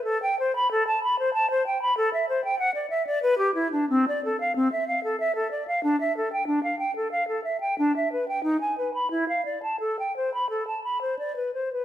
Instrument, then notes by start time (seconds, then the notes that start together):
flute
0.04 A4
0.23 G5
0.39 C5
0.56 B5
0.71 A4
0.87 A5
1.04 B5
1.19 C5
1.34 A5
1.51 C5
1.67 G5
1.82 B5
1.97 A4
2.14 E5
2.29 C5
2.45 G5
2.59 F#5
2.75 D5
2.90 E5
3.07 D5
3.23 B4
3.38 G4
3.55 E4
3.72 D4
3.89 C4
4.08 D5
4.25 A4
4.40 F5
4.56 C4
4.72 E5
4.88 F5
5.04 A4
5.20 E5
5.35 A4
5.51 D5
5.67 F5
5.83 D4
6.01 E5
6.17 A4
6.33 G5
6.47 D4
6.63 F5
6.79 G5
6.96 A4
7.12 F5
7.28 A4
7.44 E5
7.61 G5
7.78 D4
7.96 E5
8.13 B4
8.28 G5
8.44 D#4
8.61 G#5
8.78 B4
8.94 B5
9.11 E4
9.29 F5
9.45 D5
9.63 A5
9.80 A4
9.99 G5
10.17 C5
10.34 B5
10.50 A4
10.67 A5
10.84 B5
11.01 C5
11.19 D5
11.36 B4
11.54 C5
11.73 B4